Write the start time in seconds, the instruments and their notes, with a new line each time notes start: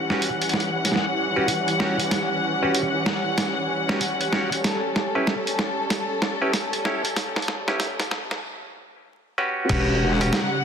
Already playing: string section E3 G3 C#4 F#5
0.10 clav C#4 F#4 G4 B4, snare
0.22 closed hi-hat
0.42 closed hi-hat
0.49 closed hi-hat
0.54 snare
0.60 closed hi-hat
0.85 snare, closed hi-hat
0.92 snare
0.96 snare
1.36 clav C#4 F#4 G4 B4
1.48 closed hi-hat
1.68 closed hi-hat
1.80 clav C#4 F#4 G4 C#5, snare
2.00 closed hi-hat
2.11 snare, closed hi-hat
2.63 clav C#4 F#4 G4 B4
2.75 closed hi-hat
3.06 snare
3.38 snare, closed hi-hat
3.89 clav C#4 F#4 G4 B4, snare
4.01 closed hi-hat
4.21 closed hi-hat
4.33 clav C#4 F#4 G4 C#5, snare
4.52 closed hi-hat
4.64 string section A4, snare, closed hi-hat
4.96 snare
5.15 clav C#4 E4 G4 B4
5.27 snare
5.47 closed hi-hat
5.59 snare
5.90 snare, closed hi-hat
6.22 snare
6.41 clav C#4 E4 G4 B4
6.54 snare, closed hi-hat
6.73 closed hi-hat
6.85 clav C#4 E4 G4 C#5, snare
7.05 closed hi-hat
7.16 snare, closed hi-hat
7.36 snare
7.42 closed hi-hat
7.48 snare
7.68 clav C#4 E4 G4 B4, snare
7.80 snare, closed hi-hat
8.00 snare, closed hi-hat
8.11 snare
8.31 snare
9.38 clav C#4 F#4 G4 B4
9.69 wobble bass E1, string section C#3 G3 F#5, clav C#4 F#4 G4 B4, kick, closed hi-hat, crash
10.21 clav C#4 F#4 G4 B4, closed hi-hat
10.33 snare, closed hi-hat